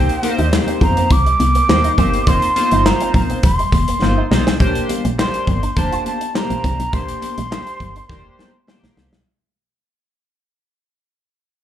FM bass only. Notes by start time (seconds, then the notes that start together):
0.39 D#2
0.81 F2
1.11 C2
1.40 C2
1.69 D#2
1.98 F#1
2.27 F1
2.72 G1
3.14 A#1
3.44 F1
3.72 F1
4.02 G1
4.31 B1
4.60 A#1
5.05 A#1
5.47 G1
5.77 F1
6.50 A#1
6.64 C2
6.79 B1
6.93 A#1
7.38 A#1
7.80 G1
8.09 F1
8.83 A#1
8.97 C2
9.13 B1